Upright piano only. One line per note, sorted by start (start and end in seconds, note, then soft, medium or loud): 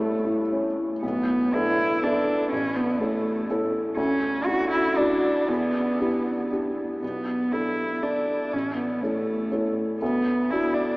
0.00 0.99 A2 medium
0.00 0.14 E4 medium
0.00 0.40 A4 medium
0.25 0.66 E4 soft
0.52 0.93 C#4 medium
0.77 1.03 E4 soft
1.03 1.52 B1 medium
1.54 1.99 B3 soft
1.54 1.99 D4 soft
1.54 1.99 A4 soft
2.03 2.47 B3 soft
2.03 2.47 D4 soft
2.03 2.48 A4 medium
2.52 2.99 A1 medium
3.01 3.45 C#4 soft
3.01 3.45 E4 soft
3.01 3.46 A4 soft
3.50 3.94 C#4 soft
3.50 3.94 E4 soft
3.50 3.94 A4 medium
3.97 4.45 D2 medium
4.47 4.94 D4 soft
4.47 4.94 E4 soft
4.47 4.94 F#4 soft
4.97 5.44 D4 soft
4.97 5.44 E4 soft
4.97 5.45 F#4 medium
5.48 5.98 E2 medium
6.00 6.47 D4 soft
6.00 6.47 E4 soft
6.00 6.47 G4 soft
6.51 6.98 D4 soft
6.51 6.99 E4 soft
6.51 6.99 G4 soft
7.02 7.51 B1 soft
7.53 7.99 D4 soft
7.53 7.99 A4 soft
8.03 8.49 D4 soft
8.03 8.49 A4 soft
8.53 9.01 A1 soft
9.02 9.47 C#4 soft
9.02 9.48 E4 soft
9.02 9.48 A4 soft
9.51 9.97 C#4 soft
9.51 9.97 E4 soft
9.51 9.97 A4 soft
10.02 10.49 D2 medium
10.52 10.97 D4 soft
10.52 10.97 E4 soft
10.52 10.97 F#4 soft